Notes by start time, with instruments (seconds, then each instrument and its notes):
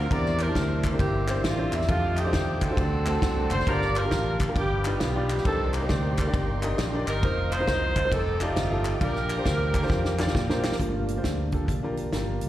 Already playing: tonewheel organ A#4 D5 C6
0.09 fingered electric bass E2, upright piano E3 C4 D4 E4 G4 A#4, saxophone section G4 A#4 D5, tonewheel organ E5, kick, ride
0.26 snare
0.39 saxophone section D4 G4 A#4, clap, ride
0.46 upright piano C4 D4 E4 G4 A5
0.55 fingered electric bass D2, kick, snare, ride
0.83 kick, clap, ride
0.91 upright piano C4 D4 E4 G4 A#4
0.99 fingered electric bass G1, saxophone section A#3 C4 G4, kick, ride
1.27 upright piano C4 D4 E4 G4 C5, saxophone section G4, clap, ride
1.44 fingered electric bass A1, saxophone section F4, snare, ride
1.57 upright piano C4 D4 E4 G4 C5
1.73 fingered electric bass E2, saxophone section E4, clap, ride
1.81 snare
1.88 fingered electric bass F2, saxophone section A3 C4 F4, upright piano D4 D#4 F4 G4 A4, tonewheel organ D#4 A4 G5 D6, kick, ride
2.17 saxophone section C4 D#4 G4, clap, ride
2.24 upright piano D#4 F4 G4 C5 D5
2.33 fingered electric bass D#2, kick, snare, ride
2.61 saxophone section C4 F#4 A4, kick, clap, ride
2.69 upright piano D4 D#4 F4 G4 C5
2.77 fingered electric bass D2, upright piano D3, tonewheel organ D5 F#5 C6, kick, ride
3.06 upright piano A3 C4 D4 F#4 A4, clap, ride
3.22 fingered electric bass C2, kick, snare, ride
3.36 upright piano A3 C4 D4 F#4 A4
3.51 fingered electric bass F#1, saxophone section C5, clap, ride
3.60 snare
3.66 fingered electric bass G1, upright piano G2 A#3 D4 F4 G4 A4, saxophone section F4 A#4, tonewheel organ G4 A#4 F5 A5, kick, ride
3.70 saxophone section D5
3.81 snare
3.96 saxophone section D4 F4 A#4, clap, ride
4.03 upright piano A#3 D4 F4 G4 A#4
4.11 fingered electric bass A1, kick, snare, ride
4.39 kick, clap, ride
4.47 upright piano A#3 D4 F4 G4 A#4
4.56 fingered electric bass G1, upright piano G2, saxophone section B3 D4 G4, tonewheel organ G4 G5 B5, kick, ride
4.84 upright piano D4 D#4 F4 G4 B4, saxophone section G4, clap, ride
5.00 fingered electric bass B1, saxophone section F4, snare, ride
5.14 upright piano D4 D#4 F4 G4 D5
5.29 saxophone section G4, clap, ride
5.37 snare
5.44 fingered electric bass C2, upright piano C3 D4 D#4 G4 A#4 C5, saxophone section D4 D#4 A4, tonewheel organ A#4 D5 C6, kick, ride
5.74 saxophone section A#3 D#4 G4, clap, ride
5.81 upright piano D#3 C4 G4 A#4 C5
5.88 fingered electric bass D2, upright piano D5, kick, snare, ride
6.17 saxophone section A#3 D#4 G4, kick, clap, ride
6.26 upright piano D4 D#4 G4 A#4 D5
6.34 fingered electric bass G1, kick, ride
6.62 upright piano D4 D#4 G4 A#4 D#5, clap, ride
6.78 fingered electric bass A#1, snare, ride
6.93 upright piano D4 D#4 G4 A#4 D5
7.07 fingered electric bass G1, saxophone section D#4 A#4, clap, ride
7.22 fingered electric bass F1, upright piano C4 D#4 F4 A#4 C5, tonewheel organ D#5 F5, kick, ride
7.52 saxophone section D#4 C5, clap, ride
7.59 upright piano C4 D#4 F4 A#4 C5
7.67 fingered electric bass C2, kick, snare, ride
7.96 kick, clap, ride
8.04 upright piano C4 D#4 F4 A#4 C5
8.12 fingered electric bass F1, saxophone section C4 D#4 A4, tonewheel organ A4 G5 D6, kick, ride
8.40 saxophone section A3 C4 F4, upright piano D#4 F4 G4 A4 D5, clap, ride
8.56 fingered electric bass G1, snare, ride
8.70 upright piano D#4 F4 G4 A4 D#5
8.85 clap, ride
9.00 fingered electric bass A#1, upright piano A#2 D4 F4 G4 A#4 D5, saxophone section D4 G4 A#4, tonewheel organ A#4 F5, kick, ride
9.16 snare
9.30 clap, ride
9.37 upright piano D4 F4 G4 A#4 C5
9.45 fingered electric bass D2, kick, snare, ride
9.74 kick, clap, ride
9.82 upright piano D4 F4 G4 A#4 C5
9.90 fingered electric bass F2, kick, snare
10.05 snare
10.18 upright piano D4 F4 G4 A#4 D5, snare, clap
10.27 snare
10.35 fingered electric bass A#2, kick, snare
10.48 upright piano D4 F4 G4 A#4 C5, snare
10.64 snare, clap
10.72 snare
10.79 fingered electric bass G1, upright piano G2 D4 F4 G4 A#4, tonewheel organ F3 A3 A#3 D4 F4, kick, closed hi-hat
11.08 closed hi-hat
11.16 upright piano D4 F4 G4 C5
11.24 fingered electric bass D2, tonewheel organ D3 F3 A#3, kick, snare, closed hi-hat
11.52 upright piano D4 F4 G4 A4, kick, closed hi-hat
11.68 fingered electric bass A#1, kick, closed hi-hat
11.83 upright piano D4 F4 G4 A#4
11.97 closed hi-hat
12.12 fingered electric bass G1, upright piano D4 F4 G4 A#4, snare, closed hi-hat
12.41 fingered electric bass C2, closed hi-hat